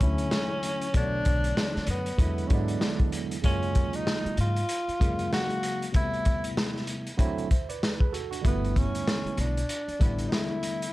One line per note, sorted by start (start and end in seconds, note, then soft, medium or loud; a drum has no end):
0.00 0.25 D2 medium
0.00 0.86 D3 medium
0.00 0.08 E3 medium
0.00 0.87 A3 medium
0.00 0.96 C#4 medium
0.00 0.87 C#4 medium
0.00 0.87 E4 medium
0.00 kick medium
0.00 closed hi-hat medium
0.07 0.89 F#3 medium
0.18 closed hi-hat soft
0.31 snare loud
0.63 closed hi-hat medium
0.81 closed hi-hat soft
0.93 1.19 B1 medium
0.93 2.08 D3 medium
0.93 2.08 F#3 medium
0.93 2.09 A3 medium
0.93 2.09 B3 medium
0.93 1.85 D4 loud
0.93 2.10 C#5 medium
0.93 kick medium
0.93 closed hi-hat medium
1.25 1.51 B1 medium
1.25 kick medium
1.25 closed hi-hat medium
1.44 closed hi-hat medium
1.57 snare loud
1.76 muted upright bass stroke soft
1.76 snare soft
1.87 2.12 F#2 medium
1.87 2.49 B3 medium
1.87 closed hi-hat medium
2.06 closed hi-hat soft
2.17 2.43 E2 medium
2.17 2.47 D3 medium
2.17 2.47 F#3 medium
2.17 2.48 G#3 medium
2.17 2.48 B3 medium
2.17 2.49 E4 medium
2.17 kick medium
2.17 closed hi-hat medium
2.38 closed hi-hat soft
2.47 2.75 G#2 medium
2.47 3.35 D3 medium
2.47 3.35 F#3 medium
2.47 3.36 G#3 medium
2.47 2.54 C#4 medium
2.47 kick medium
2.47 closed hi-hat medium
2.52 3.37 B3 medium
2.52 3.19 D4 medium
2.52 3.37 E4 medium
2.68 closed hi-hat soft
2.81 snare loud
2.99 kick medium
2.99 closed hi-hat soft
3.12 closed hi-hat medium
3.31 closed hi-hat medium
3.42 3.83 F#2 loud
3.42 4.57 C#3 medium
3.42 4.58 F#3 medium
3.42 4.58 G#3 medium
3.42 4.58 A#3 medium
3.42 3.97 C#4 loud
3.42 4.59 F4 medium
3.42 kick loud
3.42 closed hi-hat medium
3.63 closed hi-hat soft
3.75 kick medium
3.75 closed hi-hat medium
3.93 4.39 D#4 loud
3.93 closed hi-hat soft
4.07 snare loud
4.26 muted upright bass stroke soft
4.26 closed hi-hat soft
4.37 4.63 G#2 medium
4.37 5.29 F4 medium
4.37 closed hi-hat medium
4.56 closed hi-hat soft
4.69 closed hi-hat medium
4.88 muted upright bass stroke soft
4.88 closed hi-hat soft
5.00 5.25 F#2 medium
5.00 5.86 C#3 medium
5.00 5.86 F#3 medium
5.00 5.86 G#3 medium
5.00 5.87 A#3 medium
5.00 5.88 F5 medium
5.00 kick medium
5.00 closed hi-hat medium
5.19 closed hi-hat soft
5.33 5.91 F#4 loud
5.33 snare loud
5.50 closed hi-hat soft
5.63 closed hi-hat medium
5.82 closed hi-hat soft
5.92 7.07 C3 medium
5.92 7.08 G3 medium
5.92 7.08 A3 medium
5.92 7.09 B3 medium
5.92 7.09 E4 medium
5.92 kick loud
5.92 closed hi-hat medium
5.96 6.54 E4 loud
6.13 closed hi-hat soft
6.25 kick medium
6.25 closed hi-hat medium
6.44 closed hi-hat medium
6.57 snare loud
6.77 snare soft
6.87 closed hi-hat medium
7.07 closed hi-hat soft
7.17 7.47 D3 medium
7.17 7.47 F#3 medium
7.17 7.47 A3 medium
7.17 7.48 C4 medium
7.17 7.48 E4 loud
7.17 kick medium
7.17 closed hi-hat medium
7.38 closed hi-hat soft
7.51 7.69 C5 soft
7.51 kick medium
7.51 closed hi-hat medium
7.69 8.00 B4 medium
7.69 7.99 D5 medium
7.69 closed hi-hat soft
7.83 snare loud
8.00 8.13 G#4 soft
8.00 8.13 B4 medium
8.00 kick medium
8.13 8.30 F#4 medium
8.13 8.31 A4 medium
8.13 closed hi-hat medium
8.31 8.61 D4 soft
8.31 8.61 F#4 medium
8.31 closed hi-hat soft
8.42 8.83 G1 medium
8.42 9.57 D3 medium
8.42 9.57 G3 medium
8.42 9.58 A3 medium
8.42 9.58 B3 medium
8.42 9.59 E4 medium
8.42 kick medium
8.42 closed hi-hat medium
8.47 8.79 B3 medium
8.64 closed hi-hat soft
8.76 9.41 C#4 medium
8.76 kick medium
8.76 closed hi-hat medium
8.95 closed hi-hat medium
9.08 snare loud
9.25 muted upright bass stroke soft
9.25 closed hi-hat soft
9.37 9.62 B1 medium
9.37 10.27 D4 medium
9.37 closed hi-hat medium
9.57 closed hi-hat soft
9.69 closed hi-hat medium
9.88 muted upright bass stroke soft
9.88 closed hi-hat soft
9.99 10.25 A1 loud
9.99 10.85 D3 medium
9.99 10.86 G3 medium
9.99 10.86 A3 medium
9.99 10.87 B3 medium
9.99 10.87 E4 medium
9.99 kick medium
9.99 closed hi-hat medium
10.18 closed hi-hat soft
10.29 10.36 D#4 medium
10.29 snare loud
10.34 10.93 E4 medium
10.63 closed hi-hat medium
10.82 closed hi-hat medium